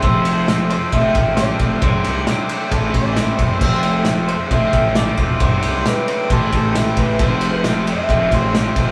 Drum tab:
CC |--------|--------|x-------|--------|
RD |xxxxxxxx|xxxxxxxx|-xxxxxxx|xxxxxxxx|
SD |--o---o-|--o---o-|--o---o-|--o---o-|
BD |o---oo-o|o---oo-o|o---oo-o|o---oo-o|

CC |--------|
RD |xxxxxxxx|
SD |--o---o-|
BD |o---oo-o|